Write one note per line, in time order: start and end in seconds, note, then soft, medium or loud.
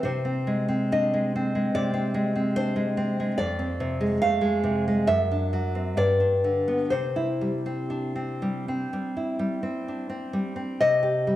0.03 1.69 C3 medium
0.03 0.86 C5 medium
0.25 0.67 C4 soft
0.47 1.12 G#3 soft
0.68 1.34 C4 soft
0.92 2.14 D4 soft
0.92 1.70 D#5 medium
1.14 1.54 G#3 soft
1.36 1.92 C4 soft
1.55 2.13 G#3 soft
1.75 3.33 C3 medium
1.75 2.51 D5 medium
1.94 2.34 C4 soft
2.14 2.75 G#3 soft
2.36 2.96 C4 soft
2.56 3.37 D4 soft
2.56 3.34 C5 medium
2.76 3.19 G#3 soft
2.97 3.37 C4 soft
3.20 3.38 G#3 soft
3.38 5.05 F2 medium
3.38 4.17 D5 medium
3.59 4.87 C4 medium
3.80 4.22 C3 medium
4.01 4.40 G#3 medium
4.22 4.63 A3 soft
4.22 5.05 F5 loud
4.41 4.86 G#3 medium
4.64 5.08 C3 medium
4.88 5.09 G#3 soft
5.07 5.94 F#2 medium
5.07 5.93 E5 loud
5.31 5.97 D4 medium
5.53 5.97 F#3 medium
5.75 5.97 C4 soft
5.97 6.89 G2 medium
5.97 6.88 D5 medium
6.20 6.92 D4 soft
6.44 6.92 D3 soft
6.68 6.92 B3 soft
6.90 8.86 C3 medium
6.90 9.81 C5 medium
7.16 8.65 E4 soft
7.41 7.90 G3 soft
7.66 8.14 C4 soft
7.90 9.37 D4 soft
8.15 8.67 C4 soft
8.42 8.92 G3 soft
8.68 9.62 C4 soft
8.93 9.38 G3 soft
9.17 10.59 E4 soft
9.39 10.32 G3 soft
9.63 10.08 C4 soft
9.88 10.82 D4 soft
10.10 10.55 C4 soft
10.33 10.81 G3 soft
10.56 10.80 C4 soft
10.81 11.36 C3 medium
10.81 11.36 D#5 medium
11.03 11.36 G4 medium
11.27 11.36 G3 medium